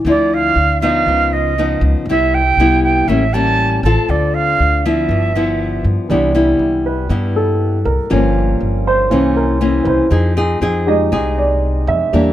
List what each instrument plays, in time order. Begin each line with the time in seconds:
0.05 upright bass D2, nylon-string guitar D3 F3 C4 E4
0.09 flute D5
0.33 flute F5
0.56 upright bass D2
0.81 nylon-string guitar F3 B3 D#4, flute F5
1.06 upright bass C#2, nylon-string guitar C#3
1.33 flute D#5
1.58 nylon-string guitar F3 B3 D#4
1.81 upright bass C#2
2.06 upright bass C2, nylon-string guitar C3
2.10 nylon-string guitar G3 B3 E4, flute E5
2.34 flute G5
2.57 upright bass C2, nylon-string guitar G3 B3 E4
2.83 flute G5
3.08 upright bass A1, nylon-string guitar A2 G3 A#3 C#4, flute E5
3.33 nylon-string guitar G3 A#3 C#4, flute A5
3.83 upright bass A1, nylon-string guitar C4 F4 A4, flute A5
4.09 upright bass D2, nylon-string guitar D3, flute D5
4.34 flute F5
4.60 upright bass D2
4.85 nylon-string guitar F3 B3 E4, flute E5
5.09 upright bass G1, nylon-string guitar G2
5.36 nylon-string guitar F3 B3 E4
5.84 upright bass G2
6.09 upright bass C2, nylon-string guitar C3 G3 B3 E4, grand piano E3 B3 D4
6.35 nylon-string guitar G3 B3 E4
6.59 upright bass C2
6.86 grand piano B4
7.10 upright bass G2, nylon-string guitar G2 G3 B3 E4
7.36 grand piano A4
7.85 upright bass C2, grand piano A#4
8.10 upright bass G1, nylon-string guitar G2 F3 A#3 C#4, grand piano F3 A#3 C#4
8.61 upright bass G1
8.87 grand piano C5
9.10 upright bass C2, nylon-string guitar C3 E3 A#3 C#4, grand piano E3 A#3 C#4
9.37 grand piano A#4
9.61 nylon-string guitar E3 A#3 C#4
9.83 upright bass C2, grand piano B4 C5
10.10 upright bass F2, nylon-string guitar F3 C4 D#4 G#4
10.37 nylon-string guitar C4 D#4 G#4
10.61 upright bass F2, nylon-string guitar C4 D#4 G#4
10.87 grand piano G#3 D#4 G4 D#5
11.12 upright bass C2, nylon-string guitar C3 C4 D#4 G#4
11.38 grand piano D5
11.87 upright bass F2, grand piano E5
12.13 upright bass E2, nylon-string guitar E3 A#3 D4 G4, grand piano G3 A#3 D4